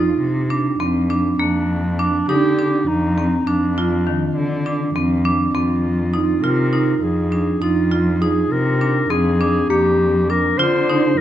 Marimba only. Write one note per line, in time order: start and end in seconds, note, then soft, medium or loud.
0.00 0.29 D#4 medium
0.50 0.69 D4 medium
0.80 0.99 C4 medium
1.10 1.29 D4 medium
1.40 1.77 A#3 medium
1.99 2.18 D4 medium
2.29 2.48 D#4 medium
2.59 2.96 D4 medium
3.18 3.36 C4 medium
3.47 3.66 D4 medium
3.78 3.96 F4 medium
4.07 4.44 D#3 medium
4.66 4.85 D4 medium
4.96 5.14 C4 medium
5.25 5.44 D4 medium
5.55 5.93 C4 medium
6.14 6.33 D#4 medium
6.44 6.63 F4 medium
6.73 7.11 D#4 medium
7.32 7.51 D4 medium
7.62 7.81 D#4 medium
7.92 8.11 F4 medium
8.22 8.60 D#4 medium
8.81 9.00 D4 medium
9.10 9.29 C4 medium
9.41 9.60 D4 medium
9.70 10.08 A#3 medium
10.30 10.49 D4 medium
10.59 10.78 F4 medium
10.90 11.21 D#4 medium